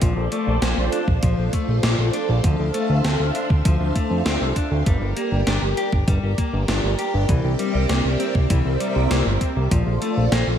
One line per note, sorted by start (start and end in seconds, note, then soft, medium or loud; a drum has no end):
0.00 0.14 A#1 loud
0.00 0.25 F3 medium
0.00 2.42 F4 medium
0.00 4.83 A4 medium
0.00 2.42 C5 medium
0.00 2.40 D5 medium
0.00 kick loud
0.00 closed hi-hat medium
0.17 0.29 A#1 medium
0.32 0.55 A3 medium
0.32 closed hi-hat medium
0.47 0.59 A#1 medium
0.62 0.74 A#1 loud
0.62 0.76 A#3 loud
0.62 snare loud
0.62 closed hi-hat medium
0.77 0.89 A#1 medium
0.92 1.06 D4 medium
0.92 closed hi-hat medium
1.08 1.20 A#1 medium
1.08 kick loud
1.23 1.35 A#1 loud
1.23 1.46 F3 medium
1.23 kick loud
1.23 closed hi-hat medium
1.38 1.50 A#1 medium
1.53 1.76 A3 medium
1.53 kick medium
1.53 closed hi-hat medium
1.68 1.80 A#1 medium
1.83 1.95 A#1 loud
1.83 1.97 A#3 loud
1.83 snare loud
1.83 closed hi-hat medium
1.98 2.10 A#1 medium
2.13 2.28 D4 medium
2.13 closed hi-hat medium
2.29 2.41 A#1 medium
2.44 2.56 D2 loud
2.44 2.67 F3 medium
2.44 4.84 D4 medium
2.44 4.84 C5 medium
2.44 4.84 E5 medium
2.44 4.84 F5 medium
2.44 kick loud
2.44 closed hi-hat medium
2.59 2.71 D2 medium
2.74 2.97 A3 medium
2.74 closed hi-hat medium
2.89 3.01 D2 medium
3.04 3.17 D2 loud
3.04 3.18 C4 loud
3.04 snare loud
3.04 closed hi-hat medium
3.20 3.32 D2 medium
3.35 3.49 D4 medium
3.35 closed hi-hat medium
3.50 3.62 D2 medium
3.50 kick loud
3.65 3.77 D2 loud
3.65 3.88 F3 medium
3.65 kick loud
3.65 closed hi-hat medium
3.80 3.92 D2 medium
3.95 4.19 A3 medium
3.95 kick medium
3.95 closed hi-hat medium
4.10 4.22 F2 medium
4.25 4.38 D2 loud
4.25 4.40 C4 loud
4.25 snare loud
4.25 closed hi-hat medium
4.41 4.53 C2 medium
4.56 4.70 D4 medium
4.56 kick medium
4.56 closed hi-hat medium
4.71 4.83 D2 medium
4.86 4.98 G1 loud
4.86 5.09 G3 medium
4.86 9.67 G4 medium
4.86 9.67 A#4 medium
4.86 10.58 D5 medium
4.86 kick loud
4.86 closed hi-hat medium
5.01 5.13 G1 medium
5.17 5.40 A#3 medium
5.17 closed hi-hat medium
5.32 5.44 G1 medium
5.47 5.59 G1 loud
5.47 5.61 D4 loud
5.47 snare loud
5.47 closed hi-hat medium
5.62 5.74 G1 medium
5.77 5.91 G4 medium
5.77 closed hi-hat medium
5.92 6.04 G1 medium
5.92 kick loud
6.08 6.20 G1 loud
6.08 6.31 G3 medium
6.08 kick loud
6.08 closed hi-hat medium
6.23 6.35 G1 medium
6.38 6.61 A#3 medium
6.38 kick medium
6.38 closed hi-hat medium
6.53 6.65 G1 medium
6.68 6.80 G1 loud
6.68 6.82 D4 loud
6.68 snare loud
6.68 closed hi-hat medium
6.84 6.95 G1 medium
6.99 7.13 G4 medium
6.99 closed hi-hat medium
7.14 7.26 G1 medium
7.29 7.41 C2 loud
7.29 7.52 E3 medium
7.29 9.69 C4 medium
7.29 9.69 E5 medium
7.29 kick loud
7.29 closed hi-hat medium
7.44 7.56 C2 medium
7.59 7.82 G3 medium
7.59 closed hi-hat medium
7.75 7.86 C2 medium
7.89 8.01 C2 loud
7.89 8.03 A#3 loud
7.89 snare loud
7.89 closed hi-hat medium
8.05 8.17 C2 medium
8.20 8.34 C4 medium
8.20 closed hi-hat medium
8.35 8.47 C2 medium
8.35 kick loud
8.50 8.62 C2 loud
8.50 8.73 E3 medium
8.50 kick loud
8.50 closed hi-hat medium
8.65 8.77 C2 medium
8.80 9.03 G3 medium
8.80 closed hi-hat medium
8.96 9.08 C2 medium
9.11 9.23 C2 loud
9.11 9.24 A#3 loud
9.11 snare loud
9.11 closed hi-hat medium
9.26 9.38 G1 medium
9.41 9.55 C4 medium
9.41 kick medium
9.41 closed hi-hat medium
9.56 9.68 C2 medium
9.71 9.83 A#1 loud
9.71 9.94 F3 medium
9.71 10.58 F4 medium
9.71 10.58 A4 medium
9.71 10.58 C5 medium
9.71 kick loud
9.71 closed hi-hat medium
9.87 9.98 A#1 medium
10.02 10.25 A3 medium
10.02 closed hi-hat medium
10.17 10.29 A#1 medium
10.32 10.44 A#1 loud
10.32 10.46 A#3 loud
10.32 snare loud
10.32 closed hi-hat medium
10.47 10.58 A#1 medium